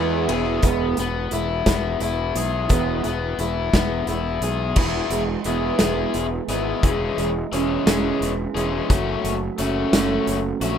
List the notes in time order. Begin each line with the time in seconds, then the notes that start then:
Already playing: E2 E3 G#3 B3 E4
0.00 G#4
0.27 E1 G#3 B3 E4 G#4, ride
0.33 E4
0.46 clap
0.62 E1 E3 G#3 B3, kick, closed hi-hat
0.97 E1 E3 G#3 B3, closed hi-hat
1.31 E1 E3 G#3 E4, closed hi-hat
1.66 E1 E3 G#3 B3, kick, snare, closed hi-hat
2.00 E1 E3 G#3 E4, closed hi-hat
2.35 B1 E3 G#3 G#4, closed hi-hat
2.68 E1 E3 G#3 B3, kick, closed hi-hat
3.04 E1 E3 G#3 B3, closed hi-hat
3.38 E1 E3 G#3 E4, closed hi-hat
3.73 E1 E3 G#3 B3, kick, snare, closed hi-hat
4.07 E1 E3 G#3 E4, closed hi-hat
4.41 B1 E3 G#3 G#4, closed hi-hat
4.76 E1 E3 B3 E4 G#4, kick, crash
5.10 E1 G#3, closed hi-hat
5.44 E1 B3 E4 G#4, closed hi-hat
5.79 E1 G#3 B3 E4 G#4, snare, closed hi-hat
6.14 E1 E3, closed hi-hat
6.48 G#1 G#3 B3 E4 G#4, closed hi-hat
6.83 E1 E3 G#3 C#4 G#4, kick, closed hi-hat
7.18 E1 G#3, closed hi-hat
7.52 E1 E3 G#3 C#4 G#4, closed hi-hat
7.86 E1 E3 G#3 C#4 G#4, snare, closed hi-hat
8.21 E1 E3, closed hi-hat
8.55 E1 E3 G#3 C#4 G#4, closed hi-hat
8.89 F#1 F#3 A3 C#4 F#4, kick, closed hi-hat
9.24 F#1 A3, closed hi-hat
9.58 F#1 A3 C#4 F#4, closed hi-hat
9.92 F#1 A3 C#4 F#4, snare, closed hi-hat
10.27 F#1 F#3, closed hi-hat
10.61 A#1 A3 C#4 F#4, closed hi-hat